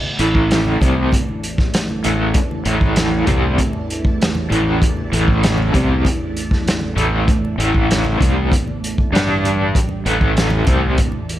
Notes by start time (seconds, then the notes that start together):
Already playing: A1 E2 A3 E4 D5 A5
0.03 high conga
0.19 A1 A2 E3 A3, closed hi-hat
0.35 kick
0.51 snare, closed hi-hat
0.66 high conga
0.81 C2 C3 G3 C4, kick, closed hi-hat, low conga
1.12 kick, closed hi-hat, high conga
1.29 high conga
1.43 closed hi-hat
1.58 kick, snare
1.74 snare, closed hi-hat
1.89 high conga
2.04 A1 A2 E3 A3, closed hi-hat, low conga
2.34 kick, closed hi-hat
2.51 high conga
2.65 A1 A2 E3 A3, closed hi-hat
2.81 kick
2.96 snare, closed hi-hat
3.27 C2 C3 G3 C4, kick, closed hi-hat, low conga
3.58 kick, closed hi-hat, high conga
3.73 high conga
3.90 closed hi-hat
4.05 kick
4.21 snare, closed hi-hat
4.35 high conga
4.50 A1 A2 E3 A3, closed hi-hat, low conga
4.82 kick, closed hi-hat
4.97 high conga
5.12 A1 A2 E3 A3, closed hi-hat
5.28 kick
5.43 snare, closed hi-hat
5.58 high conga
5.73 C2 C3 G3 C4, kick, closed hi-hat, low conga
6.05 kick, closed hi-hat, high conga
6.37 closed hi-hat
6.51 kick, snare
6.67 snare, closed hi-hat
6.81 high conga
6.96 A1 A2 E3 A3, closed hi-hat, low conga
7.28 kick, closed hi-hat
7.45 high conga
7.58 A1 A2 E3 A3, closed hi-hat
7.74 kick
7.91 snare, closed hi-hat
8.05 high conga, low conga
8.19 C2 C3 G3 C4, kick, closed hi-hat, low conga
8.52 kick, closed hi-hat, high conga
8.67 high conga
8.84 closed hi-hat
8.98 kick
9.13 G2 G3 D4 G4 D5 G5, snare, closed hi-hat
9.28 high conga
9.44 closed hi-hat, low conga
9.75 A1 E2, kick, closed hi-hat
9.89 high conga
10.04 A1 A2 E3 A3 E4 A5, closed hi-hat
10.21 kick
10.37 snare, closed hi-hat
10.50 high conga
10.65 C2 C3 G3 C4, kick, closed hi-hat, low conga
10.97 kick, closed hi-hat, high conga
11.12 high conga
11.29 closed hi-hat